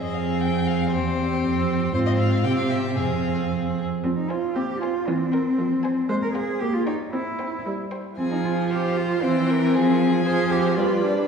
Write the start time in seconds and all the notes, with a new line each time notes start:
Already playing: F2 C4 G#4
0.02 D#5
0.14 F5
0.41 G5
0.67 F5
0.92 E2 C4 G4 C5
1.43 F2 C4
1.94 G#2 C4 F4 C5
2.06 D#5
2.17 F5
2.44 C3 C4 G4 G5
2.57 F5
2.70 E5
2.97 F2 C4 G#4 F5
4.04 F3 C4
4.17 D#4
4.29 F4 C5 G#5
4.55 C4 G4
4.81 F4 C5 G#5
5.07 E3 C4
5.32 A#4 G5
5.58 F3
5.83 C5 G#5
6.09 G#3 C5
6.23 A#4
6.34 G#4 C5 F5
6.60 A#3 G4
6.74 F4
6.86 D#4 C#5 G5
7.12 C4 E4
7.38 C5 G5
7.66 G3
7.91 C5 G5
8.18 F3 C4 G#4 G#5
8.32 D#4
8.44 F4
8.70 G4 C5 F5
8.96 F4
9.22 E3 C4 C5 G5
9.50 A#4
9.74 F3 G#4 G#5
10.25 F3 G#4 C5
10.51 G4
10.76 G3 F4 B4 D5
11.03 D4